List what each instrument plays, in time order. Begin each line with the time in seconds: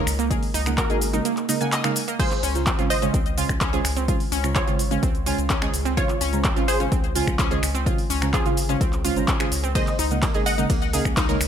0.07 analog synth bass C#2, finger snap, open hi-hat, shaker
0.19 synth pluck A#3, closed hi-hat, shaker
0.31 synth stab C#3 G#3 A#3 D#4 A#4 D#5, synth pluck G#4, kick, closed hi-hat, shaker
0.43 open hi-hat, shaker
0.54 analog synth bass C#2, synth pluck D#4, open hi-hat, shaker
0.66 synth stab C#3 G#3 A#3 D#4 A#4 F#5, finger snap, closed hi-hat, shaker
0.78 synth pluck A#3 F#4 A#4, kick, clap, closed hi-hat, shaker
0.90 analog synth bass G#1, synth stab C#3 G#3 A#3 D#4 A#4 D#5, synth pluck G#4, closed hi-hat, shaker
1.01 open hi-hat, shaker
1.13 synth stab C#3 G#3 A#3 D#4 A#4 D#5, synth pluck D#4, closed hi-hat, shaker
1.25 synth pluck A#3, closed hi-hat, shaker
1.37 clap, closed hi-hat, shaker
1.49 synth stab C#3 G#3 A#3 D#4 A#4 D#5, synth pluck D#4, open hi-hat, shaker
1.60 synth stab C#3 G#3 A#3 D#4 A#4 F#5, synth pluck G#5, closed hi-hat, shaker
1.72 synth pluck D#5, clap, closed hi-hat, shaker
1.84 synth stab C#3 G#3 A#3 D#4 A#4 F5, synth pluck A#3, finger snap, closed hi-hat, shaker
1.96 open hi-hat, shaker
2.08 synth pluck A#3, closed hi-hat, shaker
2.19 synth stab C#3 G#3 C#4 F4 F5, synth pluck F4 G#4 C5, kick, closed hi-hat, crash, shaker
2.31 clap, closed hi-hat, shaker
2.43 analog synth bass C#2, synth pluck C#4, open hi-hat, shaker
2.55 synth stab C#3 G#3 C#4 F4 C5 A#5, closed hi-hat, shaker
2.67 synth pluck C4, kick, clap, closed hi-hat, shaker
2.79 analog synth bass G#1, synth stab C#3 G#3 C#4 F4 C5 F5, synth pluck F4, closed hi-hat, shaker
2.90 synth pluck C5 D#5, open hi-hat, shaker
3.02 synth stab C#3 G#3 C#4 F4 C5 F5, synth pluck C#4, closed hi-hat, shaker
3.14 analog synth bass C#2, synth pluck C4, kick, closed hi-hat, shaker
3.26 closed hi-hat, shaker
3.37 synth stab C#3 G#3 C#4 F4 C5 G#5, synth pluck F4, open hi-hat, shaker
3.49 analog synth bass C#2, finger snap, kick, closed hi-hat, shaker
3.61 synth pluck C#4, kick, clap, closed hi-hat, shaker
3.73 synth stab C#3 G#3 C#4 F4 C5 D#5, synth pluck G#4, closed hi-hat, shaker
3.85 analog synth bass C#2, finger snap, open hi-hat, shaker
3.97 synth pluck C4, closed hi-hat, shaker
4.08 synth stab C#3 G#3 C#4 F4 C5 F5, synth pluck F4, kick, closed hi-hat, shaker
4.20 open hi-hat, shaker
4.32 analog synth bass C#2, synth pluck C#4, open hi-hat, shaker
4.44 synth stab C#3 G#3 C#4 F4 C5 A#5, finger snap, closed hi-hat, shaker
4.55 synth pluck C4 F4 C#5, kick, clap, closed hi-hat, shaker
4.67 analog synth bass G#1, synth stab C#3 G#3 C#4 F4 C5 F5, synth pluck F4, closed hi-hat, shaker
4.79 open hi-hat, shaker
4.91 synth stab C#3 G#3 C#4 F4 C5 F5, synth pluck C#4, closed hi-hat, shaker
5.03 analog synth bass C#2, synth pluck C4, kick, closed hi-hat, shaker
5.15 closed hi-hat, shaker
5.26 synth stab C#3 G#3 C#4 F4 C#5 G#5, synth pluck F4, open hi-hat, shaker
5.38 analog synth bass C#2, closed hi-hat, shaker
5.50 synth pluck C#4, kick, clap, closed hi-hat, shaker
5.62 synth stab C#3 G#3 C#4 F4 C5 D#5, synth pluck G#4, finger snap, closed hi-hat, shaker
5.74 analog synth bass C#2, open hi-hat, shaker
5.85 synth pluck C4, closed hi-hat, shaker
5.97 synth stab C#3 G#3 C#4 F4 C5 F5, synth pluck F4 C#5, kick, closed hi-hat, shaker
6.09 clap, closed hi-hat, shaker
6.21 analog synth bass C#2, synth pluck C#4, open hi-hat, shaker
6.33 synth stab C#3 G#3 C#4 F4 C5 A#5, closed hi-hat, shaker
6.44 synth pluck C4, kick, clap, closed hi-hat, shaker
6.56 analog synth bass G#1, synth stab C#3 G#3 C#4 F4 C5 F5, synth pluck F4, closed hi-hat, shaker
6.68 synth pluck G#4 C5, open hi-hat, shaker
6.80 synth stab C#3 G#3 C#4 F4 C5 F5, synth pluck C#4, closed hi-hat, shaker
6.92 analog synth bass C#2, synth pluck C4, kick, closed hi-hat, shaker
7.04 closed hi-hat, shaker
7.15 synth stab C#3 G#3 C#4 F4 C5 G#5, synth pluck F4, open hi-hat, shaker
7.27 analog synth bass C#2, finger snap, kick, closed hi-hat, shaker
7.39 synth pluck C#4, kick, clap, closed hi-hat, shaker
7.51 synth stab C#3 G#3 C#4 F4 C5 D#5, synth pluck G#4, closed hi-hat, shaker
7.63 analog synth bass C#2, finger snap, open hi-hat, shaker
7.75 synth pluck C4, closed hi-hat, shaker
7.86 synth stab C#3 G#3 C#4 F4 C5 F5, synth pluck F4, kick, closed hi-hat, shaker
7.98 open hi-hat, shaker
8.10 analog synth bass C#2, synth pluck C#4, open hi-hat, shaker
8.22 synth stab C#3 G#3 C#4 F4 C5 A#5, finger snap, shaker
8.34 synth pluck C4 F4 G#4, kick, clap, closed hi-hat, shaker
8.45 analog synth bass G#1, synth stab C#3 G#3 C#4 F4 C5 F5, synth pluck F4, closed hi-hat, shaker
8.57 open hi-hat, shaker
8.69 synth stab C#3 G#3 C#4 F4 C5 F5, synth pluck C#4, closed hi-hat, shaker
8.81 analog synth bass C#2, synth pluck C4, kick, closed hi-hat, shaker
8.93 clap, closed hi-hat, shaker
9.04 synth stab C#3 G#3 C#4 F4 C5 F5, synth pluck F4, open hi-hat, shaker
9.16 analog synth bass G#1, synth stab C#3 G#3 C#4 F4 C5 A#5, closed hi-hat, shaker
9.28 synth pluck C#4, kick, clap, closed hi-hat, shaker
9.40 synth stab C#3 G#3 C#4 F4 C5 G#5, synth pluck G#4, finger snap, closed hi-hat, shaker
9.52 analog synth bass C#2, open hi-hat, shaker
9.64 synth pluck C4, closed hi-hat, shaker
9.75 synth stab C#3 G#3 A#3 D#4 A#4 D#5, synth pluck G#4 C5 D#5, kick, closed hi-hat, ride, shaker
9.87 clap, closed hi-hat, shaker
9.99 analog synth bass C#2, synth pluck D#4, open hi-hat, shaker
10.11 synth stab C#3 G#3 A#3 D#4 A#4 F#5, closed hi-hat, shaker
10.22 synth pluck A#3, kick, clap, closed hi-hat, ride, shaker
10.34 analog synth bass G#1, synth stab C#3 G#3 A#3 D#4 A#4 D#5, synth pluck G#4, closed hi-hat, shaker
10.46 synth pluck D#5 F#5, open hi-hat, shaker
10.58 synth stab C#3 G#3 A#3 D#4 A#4 D#5, synth pluck D#4, closed hi-hat, shaker
10.70 analog synth bass C#2, synth pluck A#3, kick, closed hi-hat, ride, shaker
10.82 closed hi-hat, shaker
10.93 synth stab C#3 G#3 A#3 D#4 A#4 F5, synth pluck G#4, open hi-hat, shaker
11.05 analog synth bass C#2, finger snap, kick, closed hi-hat, shaker
11.17 synth pluck D#4, kick, clap, closed hi-hat, ride, shaker
11.29 synth stab C#3 G#3 A#3 D#4 A#4 C#5, synth pluck A#4, closed hi-hat, shaker
11.41 analog synth bass C#2, finger snap, open hi-hat, shaker